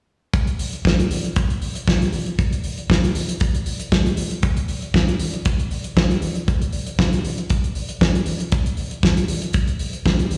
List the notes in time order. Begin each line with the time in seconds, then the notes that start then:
0.33 kick, closed hi-hat
0.47 closed hi-hat
0.59 open hi-hat
0.73 closed hi-hat
0.85 kick, snare
1.00 closed hi-hat
1.11 open hi-hat
1.24 closed hi-hat
1.36 kick, closed hi-hat
1.50 closed hi-hat
1.62 open hi-hat
1.75 closed hi-hat
1.88 kick, snare
2.02 closed hi-hat
2.13 open hi-hat
2.26 closed hi-hat
2.39 kick, closed hi-hat
2.53 closed hi-hat
2.64 open hi-hat
2.78 closed hi-hat
2.90 kick, snare
3.04 closed hi-hat
3.15 open hi-hat
3.29 closed hi-hat
3.40 kick, closed hi-hat
3.55 closed hi-hat
3.66 open hi-hat
3.80 closed hi-hat
3.92 kick, snare
4.06 closed hi-hat
4.17 open hi-hat
4.31 closed hi-hat
4.43 kick, closed hi-hat
4.57 closed hi-hat
4.68 open hi-hat
4.82 closed hi-hat
4.94 kick, snare
5.08 closed hi-hat
5.19 open hi-hat
5.33 closed hi-hat
5.45 kick, closed hi-hat
5.59 closed hi-hat
5.71 open hi-hat
5.84 closed hi-hat
5.97 kick, snare
6.11 closed hi-hat
6.22 open hi-hat
6.35 closed hi-hat
6.48 kick, closed hi-hat
6.62 closed hi-hat
6.72 open hi-hat
6.86 closed hi-hat
6.99 kick, snare
7.13 closed hi-hat
7.25 open hi-hat
7.38 closed hi-hat
7.50 kick, closed hi-hat
7.64 closed hi-hat
7.75 open hi-hat
7.89 closed hi-hat
8.01 kick, snare
8.15 closed hi-hat
8.26 open hi-hat
8.40 closed hi-hat
8.52 kick, closed hi-hat
8.66 closed hi-hat
8.77 open hi-hat
8.91 closed hi-hat
9.03 kick, snare
9.17 closed hi-hat
9.28 open hi-hat
9.42 closed hi-hat
9.53 kick, closed hi-hat
9.67 closed hi-hat
9.79 open hi-hat
9.93 closed hi-hat
10.06 kick, snare
10.19 closed hi-hat
10.31 open hi-hat